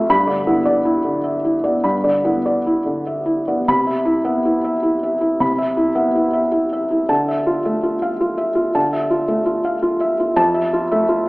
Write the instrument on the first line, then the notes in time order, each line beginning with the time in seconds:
felt piano
Already playing: F2 C3 A3 F4 E5 F5 A5
0.10 G2 B5
0.27 D3 D5
0.47 B3 E4
0.66 D5
0.85 E4
1.04 D3
1.24 E5
1.45 E4
1.64 B3 D5
1.84 G2 B5
2.04 D3 D5
2.25 B3 E4
2.46 D5
2.67 E4
2.86 D3
3.07 E5
3.26 E4
3.48 B3 D5
3.68 C3 B5
3.87 E5
4.05 E4
4.24 B3 E5
4.45 E4
4.64 E5
4.83 E4
5.03 E5
5.21 E4
5.40 C3 B5
5.58 E5
5.77 E4
5.95 B3 E5
6.15 E4
6.33 E5
6.52 E4
6.73 E5
6.91 E4
7.09 D3 A5
7.28 E5
7.47 F4
7.65 A3 E5
7.83 F4
8.02 F5
8.21 F4
8.38 E5
8.55 F4
8.75 D3 A5
8.93 E5
9.10 F4
9.28 A3 E5
9.46 F4
9.65 F5
9.82 F4
10.00 E5
10.20 F4
10.36 F2 A5
10.54 E5
10.73 F4
10.92 A3 E5
11.09 F4